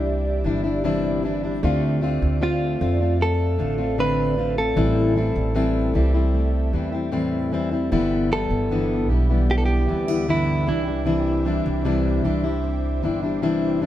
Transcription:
Already playing: C2 E3 G3 D4 E4 G4 D5 E5
0.06 C4
0.44 G1 E3 G3 D4 E4
0.64 G3 D4 E4
0.84 C3 E3 G3 C4 D4 E4
1.23 E3 G3 D4 E4
1.44 G3 D4 E4
1.63 D2 D3 A3 C4 F4 A4 F5
2.01 D3 A3 C4 F4
2.22 D2
2.41 D3 A3 C4 F4
2.80 F2 D3 A3 C4 F4
3.00 A3 C4 F4
3.20 A3 A4
3.58 A1 D3 A3 C4 F4
3.78 A3 C4 F4
3.98 D3 A3 C4 F4 B4
4.37 D3 A3 C4 F4
4.58 A3 C4 F4 A4
4.76 A1 A2 E3 G3 C4 E4 E5 G5
5.15 E3 G3 A3 C4 E4
5.36 A1
5.54 A2 E3 G3 C4 E4
5.94 C2 E3 G3 C4 E4 G4
6.14 G3 C4 E4
6.34 A3
6.73 E2 E3 G3 C4 E4
6.92 G3 C4 E4
7.12 A2 E3 G3 A3 C4 E4
7.52 E3 G3 C4 E4
7.72 G3 C4 E4
7.91 G1 G2 D3 E3 G3 B3 E4 B4 E5 G5 D6
8.31 E3 G3 B3 E4 A4
8.50 G1
8.71 G2 D3 E3 G3 B3 D4 E4
9.10 B1 E3 G3 B3 E4 G4
9.30 E3 G3 B3 E4
9.49 B3 G4
9.58 A4
9.66 G4
9.88 D2 E3 G3 B3 C4 E4
10.08 E3 G3 B3 D4 E4
10.28 G2 D3 E3 G3 B3 E4
10.66 C2 E3 G3 D4 E4 C5
10.86 G3 D4 E4
11.05 C3 E3 G3 D4 E4
11.45 E3 G3 C4 D4 E4
11.66 C2
11.85 C3 E3 G3 D4 E4
12.24 C2 E3 G3 D4 E4 G4
12.44 G3 D4 E4
12.64 C4
13.02 G1 E3 G3 D4 E4
13.23 G3 D4 E4
13.42 C3 E3 G3 C4 D4 E4
13.81 E3 G3 D4 E4

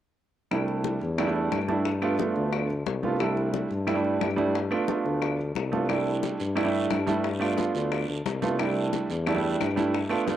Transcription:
0.51 C2 G3 A3 D4 E4, high bongo, high conga, claves
0.68 high bongo, high conga
0.84 high bongo, high conga
1.01 E2, high bongo, high conga
1.18 G3 A3 D4 E4, high bongo, high conga, claves
1.26 G3 A3 D4 E4
1.36 high conga
1.52 G2, high bongo, low bongo, high conga, claves
1.68 G3 A3 D4 E4, high bongo, high conga
1.86 high bongo, high conga
2.02 A3 B3 D4 F4, high bongo, high conga, claves
2.19 A3 B3 D4 F4, high bongo, high conga
2.36 D2, high bongo, high conga
2.53 high bongo, high conga, claves
2.70 high conga
2.86 C2, high bongo, low bongo, high conga
3.03 A3 B3 D4 F4, high bongo, high conga
3.20 G3 A3 D4 E4, high bongo, high conga, claves
3.37 high bongo, high conga
3.54 high bongo, high conga
3.70 G2, high bongo, high conga
3.87 G3 A3 D4 E4, high bongo, high conga, claves
3.94 G3 A3 D4 E4
4.04 high conga
4.21 G2, high bongo, low bongo, high conga, claves
4.36 G3 A3 D4 E4, high bongo, high conga
4.55 high bongo, high conga
4.70 A3 B3 D4 F4, high bongo, high conga, claves
4.88 A3 B3 D4 F4, high bongo, high conga
5.05 D2, high bongo, high conga
5.22 high bongo, high conga, claves
5.39 high conga
5.55 C2, high bongo, low bongo, high conga
5.72 A3 B3 D4 F4, high bongo, high conga
5.89 G3 A3 D4 E4, high bongo, high conga, long guiro, claves
6.06 high bongo, high conga
6.23 high bongo, high conga, short guiro
6.40 G2, high bongo, high conga, short guiro
6.55 G3 A3 D4 E4, high bongo, high conga, long guiro, claves
6.64 G3 A3 D4 E4
6.74 high conga
6.90 G2, high bongo, low bongo, high conga, short guiro, claves
7.07 G3 A3 D4 E4, high bongo, high conga, short guiro
7.24 high bongo, high conga, long guiro
7.40 A3 B3 D4 F4, high bongo, high conga, claves
7.57 A3 B3 D4 F4, high bongo, high conga, short guiro
7.75 D2, high bongo, high conga, short guiro
7.92 high bongo, high conga, long guiro, claves
8.09 D2, high conga
8.25 C2, high bongo, low bongo, high conga, short guiro
8.42 A3 B3 D4 F4, high bongo, high conga, short guiro
8.59 G3 A3 D4 E4, high bongo, high conga, long guiro, claves
8.76 high bongo, high conga
8.93 high bongo, high conga, short guiro
9.10 E2, high bongo, high conga, short guiro
9.27 G3 A3 D4 E4, high bongo, high conga, long guiro, claves
9.35 G3 A3 D4 E4
9.44 high conga
9.61 G2, high bongo, low bongo, high conga, short guiro, claves
9.76 G3 A3 D4 E4, high bongo, high conga, short guiro
9.94 high bongo, high conga, long guiro
10.09 A3 B3 D4 F4, high bongo, high conga, claves
10.26 A3 B3 D4 F4, high bongo, high conga, short guiro

